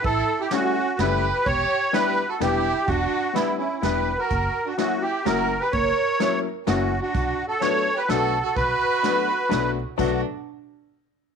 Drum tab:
CC |------|------|------|------|
HH |x-x-x-|x-x-x-|x-x-x-|x-x-x-|
SD |--o-o-|--o-o-|--o-o-|--o-o-|
BD |o-----|o-----|o-----|o-----|

CC |------|------|------|x-----|
HH |x-x-x-|x-x-x-|x-x-x-|------|
SD |--o-o-|--o-o-|--o-o-|------|
BD |o-----|o-----|o-----|o-----|